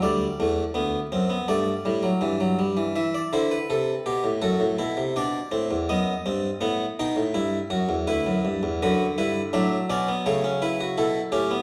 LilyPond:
<<
  \new Staff \with { instrumentName = "Harpsichord" } { \time 4/4 \key g \major \tempo 4 = 82 << { d''2 d''2 | \key e \minor e''16 d''16 c''16 b'4~ b'16 a'4 d''4 | dis''4 fis''8 g''4. b'4 | b'8 b'8 e''8 d''8 cis''8 b'8 a'8 g'8 | } \\ { r1 | r8 e'8 a'8 g'8 fis'8 e'8 d'8 c'8 | b8 c'8 b8 dis'8 e'8 fis'8 e'4 | fis'8 e'8 d'8 cis'16 b16 a16 cis'16 e'16 fis'16 e'8 cis'16 b16 | } >> }
  \new Staff \with { instrumentName = "Harpsichord" } { \clef bass \time 4/4 \key g \major << { g8 a8 b8 c'16 b16 a8 g16 fis16 e16 fis16 g16 e16 | \key e \minor r1 | r1 | d4 fis2. | } \\ { d,8 e,8 d,8 fis,8 g,8 a,8 g,4 | e8 d8 c8 b,16 a,16 fis,16 a,16 b,16 c16 b,8 a,16 e,16 | fis,8 g,8 a,8 b,16 a,16 g,8 fis,16 e,16 d,16 fis,16 g,16 e,16 | fis,8 g,8 a,8 b,8 cis4 b,8 a,8 | } >> }
>>